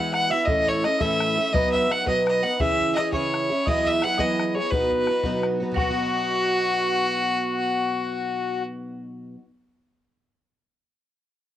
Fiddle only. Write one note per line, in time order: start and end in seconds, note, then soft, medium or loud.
0.00 0.13 F#5 loud
0.13 0.33 F#5 loud
0.31 0.47 E5 loud
0.45 0.70 D#5 loud
0.69 0.86 C#5 loud
0.85 1.02 D#5 loud
1.01 1.54 E5 loud
1.53 1.71 D#5 loud
1.72 1.93 E5 medium
1.92 2.07 F#5 loud
2.08 2.26 D#5 medium
2.28 2.45 D#5 medium
2.43 2.53 F#5 loud
2.53 2.62 F#5 medium
2.61 2.95 E5 loud
2.95 3.11 D#5 medium
3.12 3.69 C#5 medium
3.68 3.88 D#5 loud
3.87 4.05 E5 loud
4.04 4.21 F#5 loud
4.20 4.56 D#5 loud
4.55 4.72 C#5 loud
4.71 5.44 B4 loud
5.76 8.63 F#4 loud